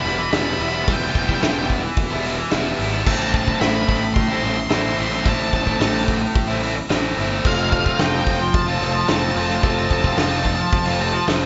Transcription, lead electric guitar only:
0.01 0.09 B5 loud
0.09 0.16 B5 loud
0.16 0.22 B5 medium
0.23 0.30 B5 loud
0.31 0.37 B5 loud
0.38 0.45 B5 loud
0.45 0.53 B5 medium
0.54 0.61 B5 loud
0.62 0.68 B5 loud
0.68 0.75 B5 medium
0.75 0.83 B5 medium
0.84 0.92 B5 medium
0.88 0.96 G5 medium
0.96 1.03 G5 medium
1.04 1.11 G5 medium
1.11 1.19 G5 medium
1.19 1.26 G5 medium
1.27 1.34 G5 medium
1.35 1.42 G5 medium
1.43 1.50 G5 medium
1.50 1.58 G5 medium
1.59 1.66 G5 medium
3.07 3.14 A5 loud
3.14 3.22 A5 medium
3.22 3.28 A5 medium
3.29 3.36 A5 medium
3.37 3.43 A5 medium
3.43 3.50 A5 medium
3.50 3.57 A5 medium
3.60 3.67 B5 loud
3.67 3.74 B5 medium
3.75 3.82 B5 loud
3.82 3.88 B5 medium
3.88 3.96 B5 loud
3.97 4.04 B5 medium
4.04 4.12 B5 medium
4.14 4.21 C6 loud
4.21 4.28 C6 medium
4.28 4.36 C6 loud
4.37 4.44 C6 medium
4.44 4.51 C6 loud
4.52 4.59 C6 medium
4.60 4.66 C6 loud
4.67 4.74 C6 medium
4.75 4.81 C6 loud
4.82 4.89 C6 medium
4.89 4.96 C6 medium
4.97 5.04 C6 medium
5.05 5.13 C6 loud
5.13 5.19 C6 medium
5.20 5.27 C6 medium
5.24 5.32 A5 loud
5.33 5.39 A5 medium
5.40 5.47 A5 medium
5.47 5.55 A5 medium
5.56 5.64 A5 medium
5.64 5.71 A5 medium
5.72 5.79 A5 medium
5.79 5.87 A5 medium
5.88 5.94 A5 medium
5.94 6.02 A5 medium
7.47 7.54 F5 loud
7.55 7.62 F5 medium
7.63 7.70 F5 loud
7.70 7.78 F5 medium
7.78 7.85 F5 medium
7.86 7.93 F5 medium
7.94 8.02 F5 medium
8.00 8.07 G5 loud
8.07 8.15 G5 medium
8.15 8.23 G5 medium
8.24 8.31 G5 medium
8.31 8.39 G5 loud
8.39 8.47 G5 medium
8.48 8.54 G5 medium
8.54 8.61 A5 loud
8.62 8.69 A5 medium
8.70 8.77 A5 medium
8.78 8.84 A5 medium
8.85 8.92 A5 medium
8.93 9.01 A5 medium
9.01 9.08 A5 medium
9.08 9.16 A5 medium
9.16 9.24 A5 medium
9.24 9.31 A5 medium
9.31 9.39 A5 loud
9.39 9.46 A5 medium
9.46 9.54 A5 medium
9.55 9.63 A5 medium
9.63 9.70 A5 loud
9.70 9.78 A5 medium
9.79 9.85 A5 loud
9.85 9.92 A5 medium
9.93 10.01 A5 loud
10.01 10.07 A5 medium
10.08 10.15 A5 loud
10.17 10.22 A5 medium
10.23 10.30 A5 loud
10.31 10.39 A5 medium
10.39 10.46 A5 medium
10.46 10.54 A5 medium
10.55 10.62 A5 medium
10.62 10.70 A5 medium
10.71 10.78 A5 medium
10.79 10.86 A5 medium
10.86 10.93 A5 medium
10.93 11.01 A5 medium
11.02 11.08 A5 medium
11.09 11.16 A5 medium
11.17 11.24 A5 medium

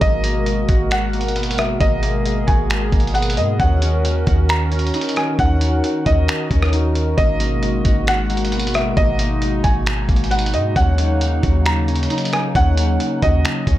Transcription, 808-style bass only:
0.01 0.66 G#1 loud
0.69 1.77 G#1 loud
1.81 2.45 G#1 loud
2.48 2.91 G#1 loud
2.92 3.39 G#1 loud
3.37 3.59 G#2 loud
3.60 4.24 D#2 loud
4.27 4.91 D#2 loud
5.39 5.82 D#2 loud
6.06 6.28 D#2 loud
6.51 7.15 D#2 loud
7.18 7.82 G#1 loud
7.85 8.93 G#1 loud
8.97 9.61 G#1 loud
9.64 10.07 G#1 loud
10.09 10.55 G#1 loud
10.54 10.75 G#2 loud
10.76 11.40 D#2 loud
11.43 12.08 D#2 loud
12.55 12.98 D#2 loud
13.23 13.44 D#2 loud
13.67 13.78 D#2 loud

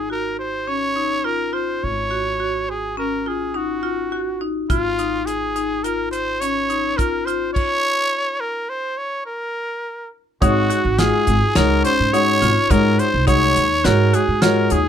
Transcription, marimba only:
0.10 0.53 F#4 medium
0.67 0.89 C#4 medium
0.96 1.18 D#4 medium
1.24 1.46 F4 medium
1.53 1.96 F4 medium
2.11 2.32 F#4 medium
2.40 2.82 F#4 medium
2.97 3.19 C#4 medium
3.26 3.47 F4 medium
3.54 3.76 D#4 medium
3.83 4.04 F4 medium
4.12 4.33 F#4 medium
4.41 4.62 D#4 medium
4.70 4.91 F4 medium
4.99 5.41 D#4 medium
5.56 5.77 D#4 medium
5.85 6.27 F4 medium
6.41 6.63 C#4 medium
6.70 6.91 D#4 medium
6.98 7.19 F4 medium
7.27 7.69 F4 medium
10.42 10.63 D#4 medium
10.70 10.91 F#4 medium
10.99 11.41 F4 medium
11.56 11.77 D#4 medium
11.84 12.06 C#4 medium
12.14 12.35 D#4 medium
12.42 12.63 F4 medium
12.70 13.12 D#4 medium
13.27 13.69 D#4 medium
13.84 14.06 F#4 medium
14.14 14.35 F#4 medium
14.42 14.63 F4 medium
14.72 14.89 D#4 medium

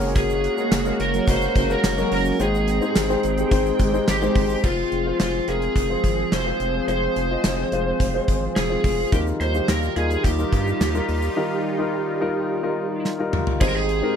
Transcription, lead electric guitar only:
0.17 0.96 G#4 medium
1.01 1.29 A#4 loud
1.29 1.72 C5 loud
1.71 2.12 A#4 loud
2.13 2.41 A#4 medium
2.42 4.33 G#4 medium
4.09 4.65 G4 loud
4.65 5.17 F4 medium
5.20 5.49 F4 medium
5.48 6.35 G#4 medium
6.33 6.85 C5 loud
6.88 8.62 C5 medium
8.57 9.13 G#4 medium
9.13 9.21 G4 medium
9.41 9.67 C5 medium
9.69 9.97 A#4 loud
9.97 10.25 G#4 medium
10.25 13.01 G4 medium
13.62 13.68 G#4 medium
13.69 13.75 A#4 medium
13.76 14.16 G#4 medium

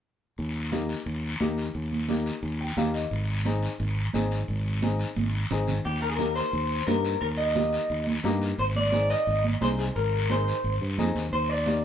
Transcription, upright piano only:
0.72 0.96 A#3 medium
0.72 0.96 D#4 medium
0.72 0.96 G4 medium
1.40 1.64 A#3 medium
1.40 1.65 D#4 medium
1.40 1.65 G4 medium
2.09 2.33 A#3 medium
2.09 2.33 D#4 medium
2.09 2.33 G4 medium
2.61 2.76 G5 medium
2.77 3.01 A#3 medium
2.77 3.01 D#4 medium
2.77 3.02 G4 medium
2.77 2.93 F5 medium
2.95 3.10 D#5 medium
3.45 3.70 C4 medium
3.45 3.70 D#4 medium
3.45 3.70 G#4 medium
4.14 4.38 C4 medium
4.14 4.38 D#4 medium
4.14 4.38 G#4 medium
4.83 5.06 C4 medium
4.83 5.07 D#4 medium
4.83 5.07 G#4 medium
5.51 5.75 C4 medium
5.51 5.75 D#4 medium
5.51 5.75 G#4 medium
6.19 6.43 A#3 medium
6.19 6.43 D#4 medium
6.19 6.44 G4 medium
6.87 7.11 A#3 medium
6.87 7.12 D#4 medium
6.87 7.12 G4 medium
7.56 7.80 A#3 medium
7.56 7.80 D#4 medium
7.56 7.80 G4 medium
8.25 8.49 A#3 medium
8.25 8.49 D#4 medium
8.25 8.49 G4 medium
8.93 9.17 C4 medium
8.93 9.17 D#4 medium
8.93 9.17 G#4 medium
9.61 9.85 C4 medium
9.61 9.85 D#4 medium
9.61 9.86 G#4 medium
10.30 10.54 C4 medium
10.30 10.54 D#4 medium
10.30 10.54 G#4 medium
10.98 11.22 C4 medium
10.98 11.23 D#4 medium
10.98 11.23 G#4 medium
11.67 11.85 A#3 medium
11.67 11.85 D#4 medium
11.67 11.85 G4 medium

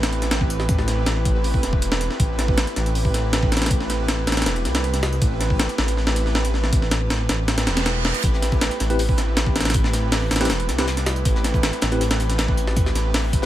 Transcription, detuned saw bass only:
0.00 1.24 A1 medium
1.26 1.65 A1 medium
1.63 2.09 E1 medium
2.20 2.66 A1 loud
2.77 4.26 A1 medium
4.27 4.48 A1 medium
4.46 4.67 E1 medium
4.65 5.20 C2 medium
5.22 5.68 A1 loud
5.78 7.28 A1 medium
7.29 7.69 A1 medium
7.67 8.13 E1 medium
8.24 8.70 A1 loud
8.80 10.30 A1 medium
10.31 10.52 A1 medium
10.50 10.71 E1 medium
10.69 11.24 C2 medium
11.25 11.71 A1 loud
11.82 13.32 A1 medium
13.33 13.46 A1 medium

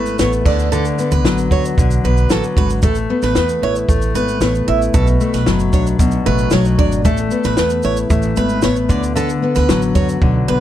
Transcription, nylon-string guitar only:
0.00 1.02 A3 medium
0.00 0.19 B3 medium
0.00 0.51 E4 medium
0.20 0.98 B3 medium
0.45 0.71 D3 medium
0.73 1.76 D3 medium
0.99 2.04 B3 medium
1.24 2.29 F#3 medium
1.51 2.55 F#4 medium
1.78 2.88 D3 medium
2.04 3.10 B3 medium
2.30 2.83 F#3 medium
2.57 2.88 F#4 medium
2.83 3.88 A3 medium
3.10 3.36 B3 medium
3.36 4.15 B3 medium
3.63 4.66 E4 medium
3.89 5.21 A3 medium
4.15 4.41 B3 medium
4.41 5.20 B3 medium
4.67 4.99 E4 medium
4.94 5.98 B2 medium
5.21 6.25 A3 medium
5.46 6.52 F#3 medium
5.73 6.78 D4 medium
5.99 7.10 B2 medium
6.26 7.05 A3 medium
6.53 7.05 F#3 medium
6.79 7.10 D4 medium
7.05 8.10 A3 medium
7.31 7.57 B3 medium
7.58 8.36 B3 medium
7.84 8.95 E4 medium
8.10 9.45 A3 medium
8.37 8.62 B3 medium
8.63 9.42 B3 medium
8.89 9.14 D3 medium
9.15 10.20 D3 medium
9.42 10.47 B3 medium
9.69 10.60 F#3 medium
9.96 10.60 F#4 medium
10.21 10.60 D3 medium
10.48 10.60 B3 medium

